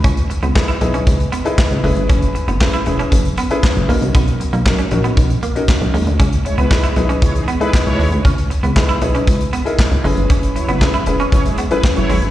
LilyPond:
<<
  \new Staff \with { instrumentName = "Grand piano" } { \time 4/4 \key cis \dorian \tempo 4 = 117 r4 <dis' e' gis' b'>16 r16 <dis' e' gis' b'>8. r8 <dis' e' gis' b'>8. <cis' e' gis' b'>8~ | <cis' e' gis' b'>8. r16 <cis' e' gis' b'>16 r16 <cis' e' gis' b'>8. r8 <cis' e' gis' b'>8. <cis' dis' fis' ais'>8~ | <cis' dis' fis' ais'>8. r16 <cis' dis' fis' ais'>16 r16 <cis' dis' fis' ais'>8. r8 <cis' dis' fis' ais'>4~ <cis' dis' fis' ais'>16 | r4 <dis' e' gis' b'>16 r16 <dis' e' gis' b'>8. r8 <dis' e' gis' b'>4~ <dis' e' gis' b'>16 |
r4 <dis' e' gis' b'>16 r16 <dis' e' gis' b'>8. r8 <dis' e' gis' ais'>8. <cis' e' gis' b'>8~ | <cis' e' gis' b'>8. r16 <cis' e' gis' b'>16 r16 <cis' e' gis' b'>8. r8 <cis' e' gis' b'>4~ <cis' e' gis' b'>16 | }
  \new Staff \with { instrumentName = "Analog polysynth" } { \time 4/4 \key cis \dorian r1 | r1 | r1 | r8 <gis e' cis''>16 <gis e' b'>8. r8 <gis e' cis''>16 <e dis' gis'>16 r16 <gis e' b'>16 r16 <gis e' cis''>8 r16 |
r1 | r8 <fis e' cis''>16 <fis e' b'>8. r8 <fis e' cis''>16 <gis e' gis'>16 r16 <fis e' b'>16 r16 <fis e' cis''>8 r16 | }
  \new Staff \with { instrumentName = "Clean electric guitar" } { \time 4/4 \key cis \dorian cis'16 r8 b16 r16 e'16 r16 cis'16 r8 b16 r8. gis16 r16 | cis'16 r8 b16 r16 e'16 r16 cis'16 r8 b16 r8. ais16 r16 | b16 r8 ais16 r16 cis'16 r16 b16 r8 ais16 r8. gis16 r16 | cis'16 r8 b16 r16 e'16 r16 cis'16 r8 b16 r8. gis16 r16 |
cis'16 r8 b16 r16 e'16 r16 cis'16 r8 b16 r8. gis16 r16 | cis'16 r8 b16 r16 e'16 r16 cis'16 r8 b16 r8. gis16 r16 | }
  \new Staff \with { instrumentName = "Analog synth bass" } { \clef bass \time 4/4 \key cis \dorian cis,8 r16 cis,8 r16 b,,8 cis,8 r8. cis,16 fis,,16 g,,16 | fis,,8 r16 fis,,8 r16 e,,8 fis,,8 r8. fis,,16 b,,16 bis,,16 | b,,8 r16 b,,8 r16 ais,,8 b,,8 r8. b,,16 dis,16 d,16 | cis,8 r16 cis,8 r16 b,,8 cis,8 r8. cis,16 dis,16 d,16 |
cis,8 r16 cis,8 r16 b,,8 cis,8 r8. cis,16 fis,,16 g,,16 | fis,,8 r16 fis,,8 r16 e,,8 fis,,8 r8. fis,,16 gis,,16 g,,16 | }
  \new DrumStaff \with { instrumentName = "Drums" } \drummode { \time 4/4 <hh bd>16 hh16 hh16 hh16 <hc bd sn>16 hh16 hh16 hh16 <hh bd>16 hh16 hh16 hh16 <hc bd sn>16 hh16 hho16 hh16 | <hh bd>16 hh16 hh16 hh16 <hc bd sn>16 hh16 hh16 hh16 <hh bd>16 hh16 hh16 hh16 <hc bd sn>16 hh16 hho16 hh16 | <hh bd>16 hh16 hh16 hh16 <hc bd sn>16 hh16 hh16 hh16 <hh bd>16 hh16 hh16 hh16 <hc bd sn>16 hh16 hho16 hh16 | <hh bd>16 hh16 hh16 hh16 <hc bd sn>16 hh16 hh16 hh16 <hh bd>16 hh16 hh16 hh16 <hc bd sn>16 hh16 hho16 hh16 |
<hh bd>16 hh16 hh16 hh16 <hc bd sn>16 hh16 hh16 hh16 <hh bd>16 hh16 hh16 hh16 <hc bd sn>16 hh16 hho16 hh16 | <hh bd>16 hh16 hh16 hh16 <hc bd sn>16 hh16 hh16 hh16 <hh bd>16 hh16 hh16 hh16 <hc bd sn>16 hh16 hho16 hh16 | }
>>